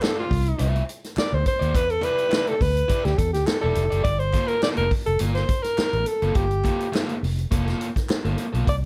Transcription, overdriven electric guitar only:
0.02 0.23 F4 medium
0.02 0.23 C5 medium
0.02 0.23 D5 medium
0.59 0.80 F4 medium
0.59 0.80 C5 loud
0.59 0.81 E5 medium
1.60 1.81 F4 medium
1.60 1.81 C5 medium
1.60 1.80 D5 medium
2.01 2.23 E4 loud
2.01 2.24 G4 loud
2.01 2.24 D5 loud
2.29 2.52 E4 medium
2.29 2.52 G4 medium
2.29 2.52 D5 medium
2.88 3.10 E4 medium
2.88 3.10 G4 loud
2.88 3.11 D5 loud
3.62 3.83 E4 medium
3.62 3.82 G4 medium
3.62 3.82 D5 medium
3.91 4.07 E4 medium
3.91 4.07 G4 medium
3.91 4.06 D5 medium
4.33 4.55 A#3 medium
4.33 4.55 F4 loud
4.33 4.55 A4 loud
4.63 4.84 A#3 medium
4.63 4.84 F4 medium
4.63 4.84 A4 medium
5.20 5.41 A#3 medium
5.20 5.42 F4 medium
5.20 5.42 A#4 medium
6.22 6.42 A#3 medium
6.22 6.43 F4 medium
6.22 6.42 A4 medium
6.64 6.85 A#3 medium
6.64 6.86 F4 loud
6.64 6.86 A4 medium
6.92 7.14 A#3 medium
6.92 7.14 F4 medium
6.92 7.14 A4 loud
7.51 7.66 A#3 medium
7.51 7.66 F4 medium
7.51 7.65 A4 medium
7.66 7.87 A#3 medium
7.66 7.87 F4 medium
7.66 7.86 A4 medium
8.25 8.45 A#3 medium
8.25 8.45 F4 medium
8.25 8.45 A4 medium
8.53 8.69 A#3 medium
8.53 8.69 F4 medium
8.53 8.68 A4 medium

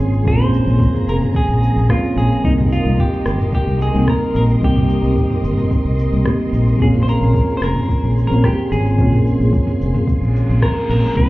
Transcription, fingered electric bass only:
0.00 0.20 G#1 medium
0.25 0.62 A#1 medium
0.66 0.77 A#1 medium
1.07 1.18 F1 medium
1.49 1.70 A#1 medium
1.76 1.86 A#1 medium
2.16 2.27 A#1 medium
2.44 2.80 C2 medium
2.85 2.95 C2 medium
3.26 3.37 G1 medium
3.67 3.88 C2 medium
3.94 4.05 C2 medium
4.35 4.56 A#1 medium
4.62 4.98 C2 loud
5.03 5.14 C2 medium
5.43 5.54 G1 medium
5.85 6.06 C2 medium
6.12 6.23 C2 medium
6.53 6.74 A#1 medium
6.80 7.16 A#1 medium
7.21 7.32 A#1 medium
7.62 7.73 F1 medium
8.03 8.24 A#1 medium
8.31 8.41 A#1 medium
8.72 8.93 G#1 medium
8.98 9.35 A#1 medium
9.40 9.50 A#1 medium
9.81 9.91 F1 medium
10.22 10.43 A#1 medium
10.49 10.59 A#1 medium
10.89 11.00 A#1 loud
11.17 11.29 C2 loud

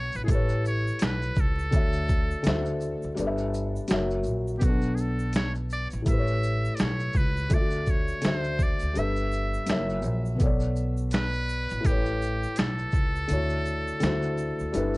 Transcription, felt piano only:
0.00 0.23 B2 medium
0.00 0.24 B3 medium
0.00 0.28 D4 medium
0.00 0.26 A4 medium
0.00 0.27 C#5 medium
0.24 1.68 A2 medium
0.24 1.69 A3 medium
0.29 1.70 G4 medium
0.29 1.72 B4 medium
0.35 1.73 C#5 medium
1.71 2.41 D3 medium
1.71 2.42 A3 medium
1.71 2.45 F#4 medium
1.71 2.46 C#5 medium
1.76 2.47 E5 medium
2.43 3.16 D3 medium
2.43 3.17 A3 medium
2.43 2.53 E4 medium
2.47 3.18 C5 medium
2.47 3.19 E5 medium
2.52 3.21 F#4 medium
3.15 3.88 G3 medium
3.15 3.89 D4 medium
3.15 3.90 A4 medium
3.19 3.90 B4 medium
3.19 3.27 D5 medium
3.27 3.92 E5 medium
3.88 4.61 F#3 medium
3.88 4.62 F#4 medium
3.88 4.62 A#4 medium
3.88 4.63 C#5 medium
3.93 4.64 E5 medium
4.58 6.02 B2 medium
4.58 6.03 B3 medium
4.63 6.04 A4 medium
4.63 6.05 B4 soft
4.68 6.07 D4 medium
6.02 7.46 A2 medium
6.02 7.47 A3 medium
6.07 7.49 G4 medium
6.07 7.50 B4 medium
6.13 6.17 C5 medium
6.19 7.55 C#5 medium
7.49 8.20 D3 medium
7.49 8.21 A3 medium
7.49 7.59 F4 soft
7.49 8.25 A4 soft
7.55 8.22 F#4 medium
7.55 8.25 E5 medium
8.21 8.95 D3 medium
8.21 8.95 A3 medium
8.21 8.96 F#4 medium
8.26 8.97 C5 medium
8.26 8.97 E5 medium
8.93 9.67 G3 medium
8.93 9.67 D4 medium
8.93 9.68 A4 medium
8.93 9.69 B4 medium
8.99 9.69 E5 medium
9.66 10.39 F#3 medium
9.66 10.40 F#4 medium
9.66 10.41 A#4 medium
9.70 10.41 C#5 medium
9.70 10.42 E5 medium
10.35 11.79 B2 medium
10.35 11.81 B3 medium
10.41 11.82 A4 medium
10.41 11.83 C#5 medium
10.46 11.85 D5 medium
11.81 13.24 A2 medium
11.81 13.26 A3 medium
11.86 13.27 G4 medium
11.86 13.28 B4 medium
11.91 13.30 C#5 medium
13.28 13.98 D3 medium
13.28 14.00 A3 medium
13.28 14.01 E4 medium
13.28 14.03 F#4 medium
13.33 14.03 C#5 medium
14.00 14.73 D3 medium
14.00 14.74 A3 medium
14.00 14.73 E4 medium
14.04 14.75 F#4 medium
14.04 14.76 C5 medium
14.72 14.97 G3 medium
14.72 14.97 D4 medium
14.72 14.97 E4 medium
14.76 14.97 A4 medium
14.76 14.97 B4 medium

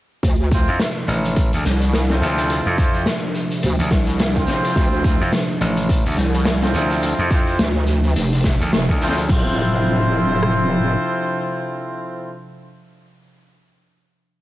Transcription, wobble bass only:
0.23 0.65 D2 loud
1.65 2.20 C2 loud
3.64 3.77 D2 loud
3.91 4.46 C2 loud
4.76 5.18 D2 loud
6.17 6.72 C2 loud
7.59 8.14 D2 loud
8.16 8.58 F1 loud
8.73 8.87 F1 medium
9.29 10.95 D1 loud

